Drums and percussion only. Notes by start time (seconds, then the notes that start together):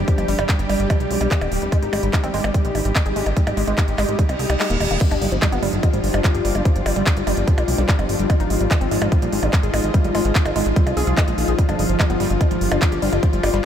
0.08 kick, closed hi-hat
0.18 closed hi-hat, percussion blips
0.28 open hi-hat
0.39 closed hi-hat, percussion blips
0.49 kick, clap, closed hi-hat
0.59 closed hi-hat
0.69 open hi-hat, percussion blips
0.80 closed hi-hat
0.90 kick, closed hi-hat, percussion blips
1.00 closed hi-hat
1.11 open hi-hat
1.21 closed hi-hat, percussion blips
1.31 kick, clap, closed hi-hat
1.41 closed hi-hat, percussion blips
1.52 open hi-hat
1.62 closed hi-hat
1.72 kick, closed hi-hat, percussion blips
1.82 closed hi-hat
1.93 open hi-hat, percussion blips
2.03 closed hi-hat
2.13 kick, clap, closed hi-hat
2.24 closed hi-hat, percussion blips
2.34 open hi-hat
2.44 closed hi-hat, percussion blips
2.54 kick, closed hi-hat
2.65 closed hi-hat
2.75 open hi-hat, percussion blips
2.85 closed hi-hat
2.95 kick, clap, closed hi-hat, percussion blips
3.06 closed hi-hat
3.16 open hi-hat
3.26 closed hi-hat, percussion blips
3.37 kick, closed hi-hat
3.47 closed hi-hat, percussion blips
3.57 open hi-hat
3.67 closed hi-hat
3.78 kick, clap, closed hi-hat, percussion blips
3.88 closed hi-hat
3.98 clap, open hi-hat, percussion blips
4.09 closed hi-hat
4.19 kick, closed hi-hat
4.29 closed hi-hat, percussion blips
4.39 open hi-hat
4.50 closed hi-hat, percussion blips
4.60 clap, open hi-hat
4.70 closed hi-hat
4.80 open hi-hat, percussion blips
4.91 closed hi-hat
5.01 kick, closed hi-hat, crash
5.11 closed hi-hat, percussion blips
5.22 open hi-hat
5.32 closed hi-hat
5.42 kick, clap, closed hi-hat, percussion blips
5.52 closed hi-hat
5.63 open hi-hat
5.73 closed hi-hat
5.83 kick, closed hi-hat, percussion blips
5.93 closed hi-hat
6.04 open hi-hat
6.14 closed hi-hat, percussion blips
6.24 kick, clap, closed hi-hat
6.35 closed hi-hat
6.45 open hi-hat
6.55 closed hi-hat, percussion blips
6.65 kick, closed hi-hat
6.76 closed hi-hat
6.86 open hi-hat, percussion blips
6.96 closed hi-hat
7.06 kick, clap, closed hi-hat
7.17 closed hi-hat
7.27 open hi-hat, percussion blips
7.37 closed hi-hat
7.48 kick, closed hi-hat
7.58 closed hi-hat, percussion blips
7.68 open hi-hat
7.78 closed hi-hat
7.89 kick, clap, closed hi-hat
7.99 closed hi-hat, percussion blips
8.09 open hi-hat
8.19 closed hi-hat
8.30 kick, closed hi-hat, percussion blips
8.40 closed hi-hat
8.50 open hi-hat
8.61 closed hi-hat
8.71 kick, clap, closed hi-hat, percussion blips
8.81 closed hi-hat
8.91 open hi-hat
9.02 closed hi-hat, percussion blips
9.12 kick, closed hi-hat
9.22 closed hi-hat
9.33 open hi-hat
9.43 closed hi-hat, percussion blips
9.53 kick, clap, closed hi-hat
9.63 closed hi-hat
9.74 open hi-hat, percussion blips
9.84 closed hi-hat
9.94 kick, closed hi-hat
10.04 closed hi-hat
10.15 open hi-hat, percussion blips
10.25 closed hi-hat
10.35 kick, clap, closed hi-hat
10.46 closed hi-hat, percussion blips
10.56 open hi-hat
10.66 closed hi-hat
10.76 kick, closed hi-hat
10.87 closed hi-hat, percussion blips
10.97 open hi-hat
11.07 closed hi-hat
11.17 kick, clap, closed hi-hat, percussion blips
11.28 closed hi-hat
11.38 open hi-hat
11.48 closed hi-hat
11.59 kick, closed hi-hat
11.69 closed hi-hat, percussion blips
11.79 open hi-hat
11.89 closed hi-hat
12.00 kick, clap, closed hi-hat, percussion blips
12.10 closed hi-hat
12.20 open hi-hat
12.30 closed hi-hat
12.41 kick, closed hi-hat, percussion blips
12.51 closed hi-hat
12.61 open hi-hat
12.72 closed hi-hat, percussion blips
12.82 kick, clap, closed hi-hat
12.92 closed hi-hat
13.02 open hi-hat
13.13 closed hi-hat, percussion blips
13.23 kick, closed hi-hat
13.33 closed hi-hat
13.43 open hi-hat, percussion blips
13.54 closed hi-hat